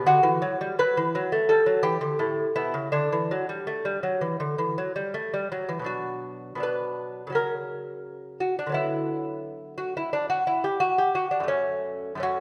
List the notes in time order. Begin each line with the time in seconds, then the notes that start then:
0.06 D3 F#4
0.23 E3
0.42 F#3
0.61 G3
0.79 F#3 B4
0.97 E3
1.15 F#3
1.32 A3
1.49 G3 A4
1.66 F#3
1.83 E3 G4
2.01 D3
2.19 A2
2.56 B2 E4
2.74 C#3
2.92 D3 D4
3.12 E3
3.31 F#3
3.49 G3
3.67 A3
3.85 G3
4.03 F#3
4.21 E3
4.40 D3
4.58 E3
4.78 F#3
4.96 G3
5.14 A3
5.34 G3
5.52 F#3
5.69 E3
5.79 B2 F#3
5.84 D4 F#4
6.55 B2 F#3
6.60 D4 B4
7.27 C#3 F#3
7.32 C#4 A#4
8.40 F#4
8.59 D4
8.67 D3 F#3
8.72 B3 E4
9.78 F#4
9.97 E4
10.13 D4
10.30 F#4
10.47 E4
10.64 G4
10.80 F#4
10.98 G4
11.15 F#4
11.31 D4
11.40 F#2 A3
11.48 C#4
12.15 F#2 A3
12.20 C#4 F#4